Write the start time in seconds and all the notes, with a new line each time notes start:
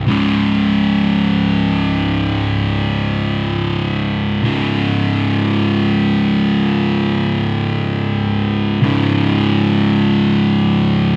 0.07 C#2 G#2 C#3
4.44 C#2 G#2 C#3
8.82 C#2 G#2 C#3